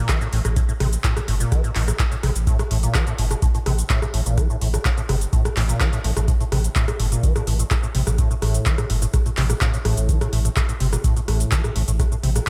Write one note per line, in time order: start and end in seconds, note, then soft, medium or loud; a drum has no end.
0.00 0.10 A#2 medium
0.09 0.19 E3 medium
0.09 kick loud
0.09 cross-stick medium
0.09 clap loud
0.09 closed hi-hat medium
0.09 shaker medium
0.21 0.28 A2 medium
0.21 shaker soft
0.33 0.41 A1 loud
0.33 0.40 A2 medium
0.33 open hi-hat loud
0.45 0.62 A1 medium
0.45 0.49 A2 medium
0.45 cross-stick medium
0.45 closed hi-hat medium
0.45 shaker medium
0.56 0.61 A2 medium
0.56 kick loud
0.56 closed hi-hat medium
0.56 shaker medium
0.69 0.73 A2 medium
0.69 shaker soft
0.80 0.97 A1 loud
0.80 0.87 C3 loud
0.80 cross-stick medium
0.80 open hi-hat loud
0.93 closed hi-hat medium
0.93 shaker medium
1.04 1.14 A2 medium
1.04 kick loud
1.04 clap loud
1.04 closed hi-hat medium
1.04 shaker medium
1.16 1.20 A2 medium
1.16 cross-stick medium
1.16 closed hi-hat soft
1.16 shaker soft
1.28 1.45 G1 loud
1.28 1.35 A2 medium
1.28 open hi-hat loud
1.40 1.53 A#2 medium
1.40 closed hi-hat medium
1.40 shaker medium
1.52 1.62 E3 medium
1.52 kick loud
1.52 cross-stick medium
1.52 closed hi-hat medium
1.52 shaker medium
1.64 1.70 A2 medium
1.64 closed hi-hat soft
1.64 shaker soft
1.75 1.93 A1 medium
1.75 1.82 A2 medium
1.75 clap medium
1.75 open hi-hat loud
1.88 1.92 A2 medium
1.88 cross-stick medium
1.88 closed hi-hat medium
1.88 shaker medium
1.99 2.04 A2 medium
1.99 kick loud
1.99 clap loud
1.99 closed hi-hat medium
1.99 shaker medium
2.12 2.16 A2 medium
2.12 closed hi-hat soft
2.12 shaker soft
2.23 2.32 A1 loud
2.23 2.30 C3 loud
2.23 cross-stick medium
2.23 open hi-hat loud
2.36 2.52 A1 medium
2.36 closed hi-hat soft
2.36 shaker medium
2.47 2.57 A2 medium
2.47 kick loud
2.47 closed hi-hat medium
2.47 shaker medium
2.59 2.63 A2 medium
2.59 cross-stick medium
2.59 closed hi-hat soft
2.59 shaker soft
2.71 2.88 A1 loud
2.71 2.78 A2 medium
2.71 open hi-hat loud
2.83 2.96 A#2 medium
2.83 closed hi-hat medium
2.83 shaker medium
2.94 3.05 E3 medium
2.94 kick loud
2.94 cross-stick medium
2.94 clap loud
2.94 closed hi-hat medium
2.94 shaker soft
3.07 3.13 A2 medium
3.07 closed hi-hat soft
3.07 shaker soft
3.18 3.35 G1 loud
3.18 3.25 A2 medium
3.18 open hi-hat loud
3.31 3.35 A2 medium
3.31 cross-stick medium
3.31 closed hi-hat soft
3.31 shaker medium
3.42 3.46 A2 medium
3.42 kick loud
3.42 closed hi-hat medium
3.42 shaker medium
3.55 3.59 A2 medium
3.55 closed hi-hat soft
3.55 shaker soft
3.66 3.83 A1 loud
3.66 3.73 C3 loud
3.66 cross-stick medium
3.66 open hi-hat loud
3.78 closed hi-hat medium
3.78 shaker medium
3.90 4.00 A2 medium
3.90 kick loud
3.90 clap loud
3.90 closed hi-hat medium
3.90 shaker medium
4.02 4.06 A2 medium
4.02 cross-stick medium
4.02 shaker soft
4.14 4.22 A1 loud
4.14 4.21 A2 medium
4.14 open hi-hat loud
4.26 4.43 A1 medium
4.26 4.39 A#2 medium
4.26 closed hi-hat soft
4.26 shaker medium
4.38 4.48 E3 medium
4.38 kick loud
4.38 cross-stick medium
4.38 closed hi-hat medium
4.38 shaker soft
4.50 4.56 A2 medium
4.50 shaker soft
4.61 4.78 A1 loud
4.61 4.68 A2 medium
4.61 open hi-hat loud
4.74 4.78 A2 medium
4.74 cross-stick medium
4.74 closed hi-hat soft
4.74 shaker medium
4.85 4.89 A2 medium
4.85 kick loud
4.85 clap loud
4.85 closed hi-hat medium
4.85 shaker medium
4.98 5.01 A2 medium
4.98 closed hi-hat soft
4.98 shaker soft
5.09 5.26 G1 loud
5.09 5.16 C3 loud
5.09 cross-stick medium
5.09 open hi-hat loud
5.21 closed hi-hat soft
5.21 shaker medium
5.33 5.43 A2 medium
5.33 kick loud
5.33 closed hi-hat medium
5.33 shaker medium
5.45 5.49 A2 medium
5.45 cross-stick medium
5.45 closed hi-hat soft
5.45 shaker soft
5.57 5.74 A1 loud
5.57 5.63 A2 medium
5.57 clap medium
5.57 open hi-hat loud
5.69 5.82 A#2 medium
5.69 closed hi-hat soft
5.69 shaker medium
5.80 5.91 E3 medium
5.80 kick loud
5.80 cross-stick medium
5.80 clap loud
5.80 closed hi-hat medium
5.80 shaker soft
5.93 5.99 A2 medium
5.93 closed hi-hat soft
5.93 shaker soft
6.04 6.13 A1 loud
6.04 6.11 A2 medium
6.04 open hi-hat loud
6.17 6.33 A1 medium
6.17 6.20 A2 medium
6.17 cross-stick medium
6.17 closed hi-hat soft
6.17 shaker medium
6.28 6.32 A2 medium
6.28 kick loud
6.28 closed hi-hat medium
6.28 shaker medium
6.40 6.44 A2 medium
6.40 closed hi-hat soft
6.40 shaker soft
6.52 6.69 A1 loud
6.52 6.59 C3 loud
6.52 cross-stick medium
6.52 open hi-hat loud
6.64 closed hi-hat soft
6.64 shaker medium
6.76 6.86 A2 medium
6.76 kick loud
6.76 clap loud
6.76 closed hi-hat medium
6.76 shaker soft
6.88 6.92 A2 medium
6.88 cross-stick medium
6.88 closed hi-hat soft
6.88 shaker soft
7.00 7.16 G1 loud
7.00 7.06 A2 medium
7.00 open hi-hat loud
7.12 7.25 A#2 medium
7.12 closed hi-hat soft
7.12 shaker medium
7.23 7.34 E3 medium
7.23 kick loud
7.23 closed hi-hat medium
7.23 shaker medium
7.36 7.42 A2 medium
7.36 cross-stick medium
7.36 closed hi-hat soft
7.36 shaker soft
7.47 7.64 A1 loud
7.47 7.54 A2 medium
7.47 open hi-hat loud
7.59 7.63 A2 medium
7.59 closed hi-hat soft
7.59 shaker medium
7.71 7.75 A2 medium
7.71 kick loud
7.71 cross-stick medium
7.71 clap loud
7.71 closed hi-hat medium
7.71 shaker medium
7.83 7.87 A2 medium
7.83 shaker soft
7.95 8.03 A1 loud
7.95 8.01 C3 loud
7.95 open hi-hat loud
8.07 8.23 A1 medium
8.07 8.11 A#2 medium
8.07 cross-stick medium
8.07 closed hi-hat soft
8.07 shaker medium
8.18 8.29 A2 medium
8.18 kick loud
8.18 closed hi-hat medium
8.18 shaker medium
8.31 8.35 A2 medium
8.31 shaker soft
8.42 8.59 A1 loud
8.42 8.68 A2 medium
8.42 cross-stick medium
8.42 open hi-hat loud
8.54 closed hi-hat soft
8.54 shaker medium
8.66 8.76 E3 medium
8.66 kick loud
8.66 clap loud
8.66 closed hi-hat medium
8.66 shaker medium
8.78 8.85 A2 medium
8.78 cross-stick medium
8.78 closed hi-hat soft
8.78 shaker soft
8.90 9.07 G1 loud
8.90 8.97 A2 medium
8.90 open hi-hat loud
9.02 9.06 A2 medium
9.02 closed hi-hat soft
9.02 shaker medium
9.14 9.18 A2 medium
9.14 kick loud
9.14 cross-stick medium
9.14 closed hi-hat medium
9.14 shaker medium
9.26 9.30 A2 medium
9.26 closed hi-hat soft
9.26 shaker soft
9.37 9.54 A1 medium
9.37 9.44 C3 loud
9.37 clap medium
9.37 open hi-hat loud
9.50 9.54 A#2 medium
9.50 cross-stick medium
9.50 closed hi-hat medium
9.50 shaker medium
9.61 9.72 A2 medium
9.61 kick loud
9.61 clap loud
9.61 closed hi-hat medium
9.61 shaker medium
9.74 9.78 A2 medium
9.74 closed hi-hat soft
9.74 shaker soft
9.85 9.94 A1 loud
9.85 10.10 A2 medium
9.85 cross-stick medium
9.85 open hi-hat loud
9.97 10.14 A1 medium
9.97 closed hi-hat medium
9.97 shaker medium
10.09 10.19 E3 medium
10.09 kick loud
10.09 closed hi-hat medium
10.09 shaker medium
10.21 10.28 A2 medium
10.21 cross-stick medium
10.21 closed hi-hat soft
10.21 shaker soft
10.33 10.50 A1 loud
10.33 10.40 A2 medium
10.33 open hi-hat loud
10.45 10.49 A2 medium
10.45 closed hi-hat medium
10.45 shaker medium
10.56 10.61 A2 medium
10.56 kick loud
10.56 cross-stick medium
10.56 clap loud
10.56 closed hi-hat medium
10.56 shaker medium
10.69 10.73 A2 medium
10.69 closed hi-hat soft
10.69 shaker soft
10.80 10.97 G1 loud
10.80 10.87 C3 loud
10.80 open hi-hat loud
10.93 10.97 A#2 medium
10.93 cross-stick medium
10.93 closed hi-hat soft
10.93 shaker medium
11.04 11.14 A2 medium
11.04 kick loud
11.04 closed hi-hat medium
11.04 shaker medium
11.16 11.20 A2 medium
11.16 closed hi-hat soft
11.16 shaker soft
11.28 11.45 A1 loud
11.28 11.53 A2 medium
11.28 cross-stick medium
11.28 open hi-hat loud
11.40 closed hi-hat medium
11.40 shaker medium
11.51 11.62 E3 medium
11.51 kick loud
11.51 clap loud
11.51 closed hi-hat medium
11.51 shaker medium
11.64 11.70 A2 medium
11.64 cross-stick medium
11.64 shaker soft
11.76 11.84 A1 loud
11.76 11.82 A2 medium
11.76 open hi-hat loud
11.88 12.04 A1 medium
11.88 11.92 A2 medium
11.88 closed hi-hat medium
11.88 shaker medium
11.99 12.04 A2 medium
11.99 kick loud
11.99 cross-stick medium
11.99 closed hi-hat medium
11.99 shaker medium
12.12 12.16 A2 medium
12.12 shaker soft
12.23 12.40 A1 loud
12.23 12.30 C3 loud
12.23 open hi-hat loud
12.36 12.39 A#2 medium
12.36 cross-stick medium
12.36 closed hi-hat medium
12.36 shaker medium